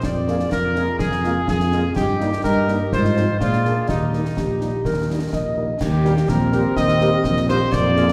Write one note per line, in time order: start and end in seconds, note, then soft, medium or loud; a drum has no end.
0.03 0.44 F2 medium
0.03 0.53 D5 medium
0.03 concert bass drum medium
0.03 snare medium
0.28 0.37 G#3 soft
0.28 0.37 A#3 medium
0.28 0.37 F4 soft
0.28 0.37 G#4 soft
0.28 0.37 A#4 soft
0.28 snare soft
0.39 snare soft
0.52 0.92 F2 medium
0.52 0.97 A#4 medium
0.52 concert bass drum medium
0.52 snare medium
0.75 0.85 G#3 soft
0.75 0.85 A#3 soft
0.75 0.85 F4 soft
0.75 0.85 G#4 medium
0.75 0.85 A#4 medium
0.75 snare soft
0.99 1.40 F2 medium
0.99 1.45 G#4 medium
0.99 concert bass drum medium
0.99 snare medium
1.12 snare soft
1.24 1.33 G#3 medium
1.24 1.33 A#3 medium
1.24 1.33 F4 medium
1.24 1.33 G#4 medium
1.24 1.33 A#4 medium
1.24 snare soft
1.48 1.89 F2 medium
1.48 1.93 G#4 medium
1.48 concert bass drum medium
1.48 snare medium
1.60 snare soft
1.72 1.82 G#3 medium
1.72 1.82 A#3 medium
1.72 1.82 F4 soft
1.72 1.82 G#4 medium
1.72 1.82 A#4 medium
1.72 snare soft
1.95 2.37 G2 medium
1.95 2.41 G4 medium
1.95 2.42 G4 medium
1.95 2.42 D#5 medium
1.95 concert bass drum medium
1.95 snare medium
1.95 crash soft
2.20 2.30 G3 medium
2.20 2.30 A#3 medium
2.20 2.30 D#4 medium
2.20 snare soft
2.33 snare medium
2.44 2.85 G2 medium
2.44 2.90 G4 medium
2.44 2.78 A#4 loud
2.44 2.90 D#5 medium
2.44 concert bass drum medium
2.44 snare medium
2.68 2.78 G3 medium
2.68 2.77 A#3 soft
2.68 2.77 D#4 medium
2.68 snare soft
2.92 3.33 G#2 medium
2.92 3.38 F4 medium
2.92 3.37 C5 medium
2.92 3.38 D#5 medium
2.92 concert bass drum medium
2.92 snare medium
3.05 snare soft
3.17 3.25 F3 medium
3.17 3.25 C4 medium
3.17 3.25 D#4 medium
3.17 snare medium
3.40 3.81 A#2 medium
3.40 3.85 F4 medium
3.40 3.89 G#4 medium
3.40 3.86 D5 medium
3.40 concert bass drum medium
3.40 snare medium
3.53 snare soft
3.65 3.74 G#3 soft
3.65 3.74 A#3 soft
3.65 3.74 D4 soft
3.65 snare soft
3.89 4.29 D#2 medium
3.89 5.53 D#4 medium
3.89 4.29 G4 medium
3.89 4.29 D#5 soft
3.89 concert bass drum medium
3.89 snare medium
4.13 4.22 G3 soft
4.13 4.22 A#3 soft
4.13 4.22 D#4 soft
4.13 snare soft
4.25 snare soft
4.37 4.77 A#1 medium
4.37 4.82 G4 medium
4.37 concert bass drum medium
4.37 snare medium
4.61 4.70 G3 soft
4.61 4.70 A#3 soft
4.61 4.70 D#4 soft
4.61 snare soft
4.85 5.25 D#2 soft
4.85 5.29 A#4 medium
4.85 concert bass drum medium
4.85 snare medium
5.09 5.18 G3 soft
5.09 5.18 A#3 soft
5.09 5.18 D#4 soft
5.33 5.73 A#1 medium
5.33 5.78 D#5 soft
5.33 concert bass drum medium
5.33 snare medium
5.58 5.66 G3 soft
5.58 5.66 A#3 soft
5.58 5.66 D#4 soft
5.81 6.21 D#2 medium
5.81 6.26 A#3 medium
5.81 6.25 G4 medium
5.81 concert bass drum medium
5.81 snare medium
5.81 crash soft
6.04 6.14 G3 medium
6.04 6.14 A#3 medium
6.04 6.13 G4 medium
6.04 6.14 G4 medium
6.04 6.13 A#4 medium
6.04 snare medium
6.17 snare medium
6.27 6.69 A#1 medium
6.27 7.69 C4 medium
6.27 6.76 A#4 medium
6.27 concert bass drum medium
6.27 snare medium
6.52 6.61 G3 medium
6.52 6.61 A#3 medium
6.52 6.61 G4 medium
6.52 6.61 G4 soft
6.52 6.61 A#4 medium
6.52 snare soft
6.77 7.17 D#2 medium
6.77 7.45 D#5 loud
6.77 concert bass drum medium
6.77 snare medium
6.88 snare medium
7.01 7.10 G3 medium
7.01 7.10 A#3 medium
7.01 7.09 G4 medium
7.01 7.10 G4 medium
7.01 7.09 A#4 medium
7.01 snare soft
7.24 7.65 A#1 medium
7.24 concert bass drum medium
7.24 snare medium
7.37 snare medium
7.48 7.57 G3 medium
7.48 7.58 A#3 medium
7.48 7.57 G4 medium
7.48 7.58 G4 medium
7.48 7.57 A#4 medium
7.48 7.71 C5 loud
7.48 snare medium
7.73 8.13 F2 medium
7.73 8.13 A#3 medium
7.73 8.13 D5 loud
7.73 concert bass drum medium
7.73 snare medium
7.96 8.06 G#3 medium
7.96 8.06 A#3 medium
7.96 8.06 F4 medium
7.96 8.05 G#4 medium
7.96 8.05 A#4 medium
7.96 snare soft
8.08 snare medium